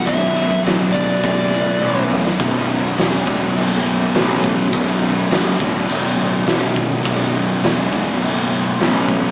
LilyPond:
<<
  \new Staff \with { instrumentName = "Lead electric guitar" } { \time 4/4 \key b \minor \tempo 4 = 103 e''4 r8 d''2 r8 | r1 | r1 | r1 | }
  \new Staff \with { instrumentName = "Distorted electric guitar" } { \clef bass \time 4/4 \key b \minor <b,, fis, b,>4. <b,, fis, b,>4. <b,, fis, b,>4 | <b,, fis, b,>4. <b,, fis, b,>4. <b,, fis, b,>4 | <b,, fis, b,>4. <b,, fis, b,>4. <b,, fis, b,>4 | <b,, fis, b,>4. <b,, fis, b,>4. <b,, fis, b,>4 | }
  \new Staff \with { instrumentName = "Distorted electric guitar" } { \clef bass \time 4/4 \key b \minor <b,, fis, b,>2.~ <b,, fis, b,>8 <b,, fis, b,>8 | <b,, fis, b,>1 | <b,, fis, b,>1 | <b,, fis, b,>1 | }
  \new Staff \with { instrumentName = "Picked electric bass" } { \clef bass \time 4/4 \key b \minor b,,,4 d,,4 fis,,4 a,,4 | b,,,4 e,,4 fis,,4 a,,4 | b,,,4 fis,,8 d,,8 e,,8 d,,8 b,,,4 | b,,,4 e,,4 fis,,4 a,,4 | }
  \new DrumStaff \with { instrumentName = "Drums" } \drummode { \time 4/4 <bd cymr>8 cymr16 bd16 <cymr sn>8 <bd cymr>8 <bd cymr>8 cymr8 tommh8 toml16 sn16 | <cymc bd>4 <cymc sn>8 bd8 cymc4 <cymc sn>8 bd8 | <cymc bd>4 <cymc sn>8 bd8 cymc4 <cymc sn>8 bd8 | <cymc bd>4 <cymc sn>8 bd8 cymc4 <cymc sn>8 bd8 | }
>>